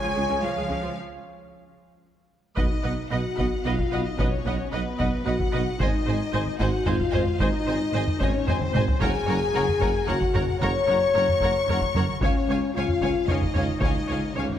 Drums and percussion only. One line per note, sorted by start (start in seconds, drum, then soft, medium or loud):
2.57 taiko medium
3.38 taiko medium
3.79 taiko medium
4.19 taiko medium
5.00 taiko medium
5.40 taiko medium
5.80 taiko medium
6.47 taiko low-mid soft
6.60 taiko medium
6.86 taiko low-mid medium
7.00 taiko medium
7.13 taiko low-mid medium
7.27 taiko low-mid soft
7.40 taiko medium
8.07 taiko low-mid soft
8.21 taiko medium
8.48 taiko low-mid medium
8.61 taiko low-mid medium
8.75 taiko mid medium
8.88 taiko low medium
9.01 taiko medium
9.69 taiko low-mid soft
9.82 taiko medium
10.09 taiko low-mid medium
10.21 taiko medium
10.35 taiko low-mid medium
10.49 taiko low-mid soft
10.62 taiko medium
11.28 taiko low-mid soft
11.41 taiko medium
11.69 taiko low-mid medium
11.81 taiko medium
11.95 taiko low-mid medium
12.08 taiko low-mid soft
12.21 taiko medium
12.88 taiko low-mid soft
13.02 taiko medium
13.28 taiko low-mid medium
13.42 taiko medium
13.55 taiko low-mid medium
13.69 taiko low-mid soft
13.82 taiko medium
14.50 taiko low-mid soft